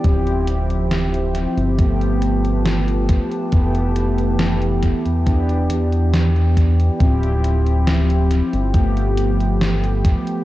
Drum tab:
HH |xxxxxxxxxxxxxxxx|xxxxxxxxxxxxxxxx|xxxxxxxxxxxxxxxx|
SD |----o-------o---|----o-------o---|----o-------o---|
BD |o-------o-----o-|o-----o-o-----o-|o-------o-----o-|